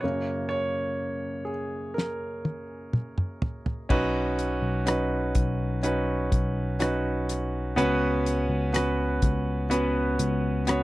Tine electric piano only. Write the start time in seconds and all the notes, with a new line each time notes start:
3.90 B1
4.62 B1
5.35 B1
6.32 B1
7.76 C#2
8.49 C#2
9.23 C#2
10.19 C#2